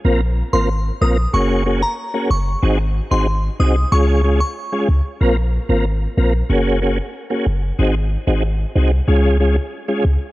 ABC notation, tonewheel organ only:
X:1
M:4/4
L:1/16
Q:1/4=93
K:Bbm
V:1 name="Tonewheel organ"
[B,CFB] z2 [B,CFB] z2 [B,CFB] z [B,DGA]2 [B,DGA] z2 [B,DGA] z2 | [CEGA] z2 [CEGA] z2 [CEGA] z [A,DFA]2 [A,DFA] z2 [A,DFA] z2 | [B,CFB] z2 [B,CFB] z2 [B,CFB] z [B,DGA]2 [B,DGA] z2 [B,DGA] z2 | [CEGA] z2 [CEGA] z2 [CEGA] z [A,DFA]2 [A,DFA] z2 [A,DFA] z2 |]